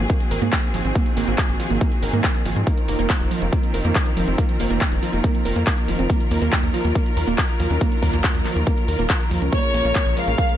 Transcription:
Already playing: D#3 C4 F#4 G#4
0.10 A#3, kick, closed hi-hat
0.20 closed hi-hat
0.31 G#1 A#4, open hi-hat
0.42 G#2 A#3, closed hi-hat
0.53 kick, clap, closed hi-hat
0.63 closed hi-hat
0.74 G#1 F3, open hi-hat
0.85 G#1 C4, closed hi-hat
0.95 A#3, kick, closed hi-hat
1.06 closed hi-hat
1.17 G#1 A#3, open hi-hat
1.28 G#1 A#3, closed hi-hat
1.38 A#3, kick, clap, closed hi-hat
1.49 G#1, closed hi-hat
1.60 F3, open hi-hat
1.70 G#1 A#3, closed hi-hat
1.81 A#3, kick, closed hi-hat
1.92 closed hi-hat
2.03 G#1 A#4, open hi-hat
2.13 G#2 A#3, closed hi-hat
2.24 A#3, kick, clap, closed hi-hat
2.35 closed hi-hat
2.45 G#1 F3, open hi-hat
2.56 G#2 C4, closed hi-hat
2.67 A#3 C4 F4 A#4, kick, closed hi-hat
2.78 closed hi-hat
2.88 F1 A#3, open hi-hat
2.99 F1 A#3, closed hi-hat
3.10 kick, clap, closed hi-hat
3.20 F1, closed hi-hat
3.31 F3, open hi-hat
3.42 F1 A#3, closed hi-hat
3.53 A#3, kick, closed hi-hat
3.63 closed hi-hat
3.74 F1 A#4, open hi-hat
3.85 F2 A#3, closed hi-hat
3.95 A#3, kick, clap, closed hi-hat
4.06 closed hi-hat
4.17 F1 F3, open hi-hat
4.28 F1 C4, closed hi-hat
4.38 A#3, kick, closed hi-hat
4.49 closed hi-hat
4.60 F1 A#3, open hi-hat
4.70 F1 A#3, closed hi-hat
4.81 A#3, kick, clap, closed hi-hat
4.92 F1, closed hi-hat
5.03 F3, open hi-hat
5.13 F1 A#3, closed hi-hat
5.24 A#3, kick, closed hi-hat
5.35 closed hi-hat
5.45 F1 A#4, open hi-hat
5.56 F2 A#3, closed hi-hat
5.67 A#3, kick, clap, closed hi-hat
5.78 closed hi-hat
5.88 F1 F3, open hi-hat
5.99 F1 C4, closed hi-hat
6.10 F#3 A#3, kick, closed hi-hat
6.20 closed hi-hat
6.31 D#2 A#3, open hi-hat
6.42 D#2 A#3, closed hi-hat
6.53 kick, clap, closed hi-hat
6.63 D#2, closed hi-hat
6.74 F3, open hi-hat
6.85 D#2 A#3, closed hi-hat
6.95 A#3, kick, closed hi-hat
7.06 closed hi-hat
7.17 D#2 A#4, open hi-hat
7.28 D#1 A#3, closed hi-hat
7.38 A#3, kick, clap, closed hi-hat
7.49 closed hi-hat
7.60 D#2 F3, open hi-hat
7.70 D#2 C#4, closed hi-hat
7.81 A#3, kick, closed hi-hat
7.92 closed hi-hat
8.03 D#2 A#3, kick, open hi-hat
8.13 D#2 A#3, closed hi-hat
8.24 A#3, kick, clap, closed hi-hat
8.35 D#2, closed hi-hat
8.45 F3, clap, open hi-hat
8.56 D#2 A#3, closed hi-hat
8.67 A#3, kick, closed hi-hat
8.78 closed hi-hat
8.88 D#2 A#4, open hi-hat
8.99 D#1 A#3, closed hi-hat
9.10 A#3, kick, clap, closed hi-hat
9.20 closed hi-hat
9.31 D#2 F3, open hi-hat
9.42 C#2 C#4, closed hi-hat
9.53 C#3 G#3 A#3 C#5, kick, closed hi-hat
9.63 closed hi-hat
9.74 A#1 A#3, open hi-hat
9.85 A#1 A#3, closed hi-hat
9.95 A#3, kick, clap, closed hi-hat
10.06 A#1, closed hi-hat
10.17 F3 F5, open hi-hat
10.28 A#1 A#3, closed hi-hat
10.38 A#3, kick, closed hi-hat
10.49 closed hi-hat

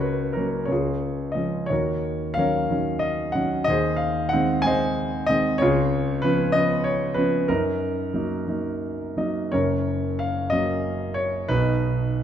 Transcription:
Already playing: C#2 F#4 A#4 C#5
0.01 B4
0.33 F#3 A#3 A#4
0.37 C#4
0.65 C#2 C#5
0.71 F4 G#4
1.32 F3 G#3 D#5
1.36 C#4
1.66 D#2 C#5
1.72 F#4 A#4
2.34 D#3 F#3 C#4 F5
2.39 A#4 C#5
2.70 D#3 F#3 C#4
2.99 D#5
3.32 D#3 F#3 C#4 F#5
3.64 D#2 D#5
3.70 G#4 C5
3.96 F5
4.29 F#5
4.33 D#3 G#3 C4
4.62 D#3 G#3 C4 G#5
4.67 C5 D#5
5.26 D#3 G#3 C4 D#5
5.58 C#2 F4 G#4 C#5
6.22 F3 B3 C#4 B4
6.52 F3 B3 C#4 D#5
6.84 C#5
7.14 F3 B3 C#4 B4
7.48 F#2 C#4 D#4 A#4
8.14 F#3 A#3 D#4
8.48 F#3 A#3 D#4
9.17 F#3 A#3 D#4 D#5
9.52 F#1 F#2 A#4 C#5
10.19 F5
10.50 F#3 A#3 C#4 D#5
11.14 C#5
11.48 B1 B2 D#4 B4

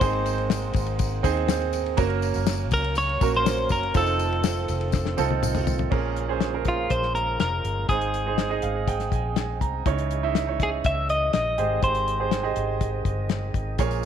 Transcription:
Already playing: G#2 D#3 A#3 C4 A#4 C5
0.00 G#1 C4 D#4 G#4 C5, kick, ride, tambourine
0.13 ride
0.26 ride, tambourine
0.38 ride
0.50 snare, ride, tambourine
0.62 ride
0.73 G#1, kick, ride, tambourine
0.86 ride
0.99 kick, ride, tambourine
1.23 D#2 C4 D#4 G#4 C5, kick, ride, tambourine
1.37 ride
1.48 snare, ride, tambourine
1.61 ride
1.73 ride, tambourine
1.86 ride
1.97 F#1 F#3 A#3 C#4 F#4 A#4, kick, ride, tambourine
2.10 ride
2.22 ride, tambourine
2.34 F#1, ride, tambourine
2.46 snare, ride, tambourine
2.71 C#2 A#4, kick, ride, tambourine
2.84 ride
2.95 C#5, ride, tambourine
3.09 ride
3.21 A#1 A#3 C#4 F#4 A#4, kick, ride, tambourine
3.34 C5, ride
3.46 snare, ride, tambourine
3.58 ride
3.69 F#1 A#4, kick, ride, tambourine
3.83 ride
3.94 F1 D#3 F3 A3 C4 D#4 F4 A4, kick, ride, tambourine
4.06 ride, tambourine
4.19 ride, tambourine
4.32 ride
4.44 snare, ride, tambourine
4.68 F1, ride, tambourine
4.81 ride
4.92 kick, snare, tambourine
5.06 snare
5.17 C2 C4 D#4 F4 A4, high tom, tambourine
5.31 high tom
5.43 mid tom, tambourine
5.55 mid tom, tambourine
5.67 floor tom, tambourine
5.79 floor tom
5.90 A#1 A#2 C#3 F3 G#3 A#3 C#4 F4 G#4 A#4, kick, crash
6.16 closed hi-hat
6.28 C#4 G#4 C5
6.41 snare, closed hi-hat
6.53 C#4 G#4 A#4
6.65 F4, kick, closed hi-hat
6.90 A#1 C5, kick, closed hi-hat
7.02 snare
7.15 A#4, closed hi-hat
7.40 F1 A#4, snare, closed hi-hat
7.64 G1, closed hi-hat
7.89 G#1 G#2 C4 D#4 G#4 C5, kick, closed hi-hat
8.01 closed hi-hat
8.14 closed hi-hat
8.26 D#4 G#4 C5
8.38 snare, closed hi-hat
8.50 D#4 G#4 D#5
8.62 G#1 F5, closed hi-hat
8.76 D#5
8.88 G5, kick, closed hi-hat
9.00 snare, closed hi-hat
9.12 A#1 G#5, kick, closed hi-hat
9.36 G#5, snare, closed hi-hat
9.61 C2 A#5, kick, closed hi-hat
9.86 C#2 C#3 E3 D#4 E4 C#5 D#5, kick, closed hi-hat
9.98 closed hi-hat
10.11 closed hi-hat
10.23 D#4 E4 E5
10.35 snare, closed hi-hat
10.47 D#4 E4 C#5
10.60 G#4, kick, closed hi-hat
10.84 C#2 E5, kick, closed hi-hat
11.09 D#5, closed hi-hat
11.33 A#1 D#5, snare, closed hi-hat
11.58 G#1 G#2 C3 D#3 G#3 G4 G#4 C5, closed hi-hat
11.82 G#1 C5, kick, closed hi-hat
11.95 closed hi-hat
12.08 closed hi-hat
12.19 G4 G#4 C5
12.31 snare, closed hi-hat
12.43 G4 G#4 D#5
12.56 G#1, closed hi-hat
12.81 kick, closed hi-hat
13.05 G1, kick, closed hi-hat
13.29 snare, closed hi-hat
13.54 G#1, kick, closed hi-hat
13.78 A#1 A#2 C#3 F3 A#3 F4 G#4 A#4 C#5, kick, closed hi-hat, tambourine
13.91 closed hi-hat, tambourine

